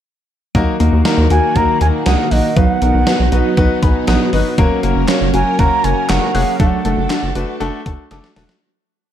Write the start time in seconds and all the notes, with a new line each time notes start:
0.55 D#2 D#3 F#3 A#3 D#4 F#4 A#4, kick, closed hi-hat
0.80 D#2 A#3 D#4 F#4 A#4, closed hi-hat
0.93 D#2
1.05 A#3 D#4 F#4 A#4, snare, closed hi-hat
1.18 D#2
1.30 D#2 A#3 D#4 F#4 A#4 G#5, closed hi-hat
1.56 D#2 A#3 D#4 F#4 A#4 F#5 A#5, kick, closed hi-hat
1.81 D#2 A#3 D#4 F#4 A#4 G#5 A#5, closed hi-hat
2.06 C#2 A#3 D#4 F#4 A#4 F#5 D#6, snare, closed hi-hat
2.31 B1 A#3 D#4 F#4 A#4 D#5 F#6, open hi-hat
2.56 B1 F#3 B3 D#4 F#4 B4 F5, kick, closed hi-hat
2.68 F#5
2.82 B1 B3 D#4 F#4 A#4, closed hi-hat
2.94 B1
3.07 B3 D#4 F#4 B4, snare, closed hi-hat
3.20 B1
3.32 B1 B3 D#4 F#4 B4, closed hi-hat
3.57 B1 B3 D#4 F#4 B4 F#5, kick, closed hi-hat
3.82 B1 B3 D#4 F#4 B4 G#5 B5, kick, closed hi-hat
4.07 A#1 B3 D#4 F#4 B4 F#5 D#6, snare, closed hi-hat
4.33 G#1 B3 D#4 F#4 B4 D#5 F#6, open hi-hat
4.58 F#1 F#3 A#3 C#4 F#4 A#4, kick, closed hi-hat
4.83 F#1 A#3 C#4 F#4 A#4, closed hi-hat
4.96 F#1
5.08 A#3 C#4 F#4 C#5, snare, clap, closed hi-hat
5.21 F#1
5.34 F#1 A#3 C#4 F#4 A#4 G#5, closed hi-hat
5.59 F#1 A#3 C#4 F#4 A#4 F#5 A#5, kick, closed hi-hat
5.84 F#1 A#3 C#4 F#4 C#5 G#5 A#5, closed hi-hat
6.09 F#1 A#3 C#4 F#4 A#4 F#5 C#6, snare, clap, closed hi-hat
6.35 F1 A#3 C#4 F#4 G#4 F#6, open hi-hat
6.60 F#1 F#3 A3 D4 F#4 A4 F#5, kick, closed hi-hat
6.85 F#1 A3 D4 F#4 A4, closed hi-hat
6.98 F#1
7.10 A3 D4 F#4 A4, snare, clap, closed hi-hat
7.23 F#1
7.35 F#1 A3 D4 F#4 B4, closed hi-hat
7.60 F#1 A3 D4 F#4 A4 F#5, closed hi-hat
7.86 F#1 A3 D4 F#4 A4 A5, kick, closed hi-hat
8.11 F#1 A3 D4 F#4 A4 D6, snare, closed hi-hat
8.24 snare
8.36 E1 A3 D4 F#4 A4 F#6, snare, open hi-hat
8.49 snare